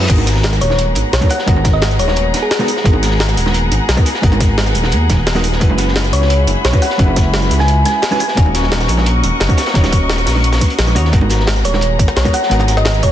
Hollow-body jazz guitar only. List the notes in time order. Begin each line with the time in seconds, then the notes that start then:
0.08 G#3 B3 D#4 F#4 A#4
1.21 G#3 B3 D#4 F#4 A#4
1.46 G#3 B3 D#4 F#4 A#4
2.59 G#3 B3 D#4 F#4 A#4
2.84 G#3 B3 D#4 F#4 A#4
3.97 G#3 B3 D#4 F#4 A#4
4.22 G#3 B3 D#4 F#4 A#4
5.35 G#3 B3 D#4 F#4 A#4
5.60 G#3 C#4 E4 F#4 B4
6.73 G#3 C#4 E4 F#4 B4
6.98 G#3 C#4 E4 F#4 B4
8.11 G#3 C#4 E4 F#4 B4
8.36 A#3 C#4 D#4 F#4 C#5
9.49 A#3 C#4 D#4 F#4 C#5
9.74 A#3 C#4 D#4 F#4 C#5
10.95 A#3 C#4 D#4 F#4 C#5
11.12 G#3 B3 D#4 F#4 A#4
12.24 G#3 B3 D#4 F#4 A#4
12.49 G#3 B3 D#4 F#4 A#4